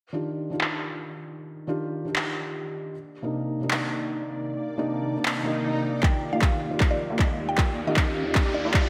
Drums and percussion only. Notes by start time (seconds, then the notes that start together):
0.61 clap
2.16 clap
3.71 clap
5.25 clap
6.03 kick, clap
6.42 kick, clap
6.80 kick, clap
7.19 kick, clap
7.58 kick, clap
7.96 kick, clap
8.35 kick, clap
8.74 kick, clap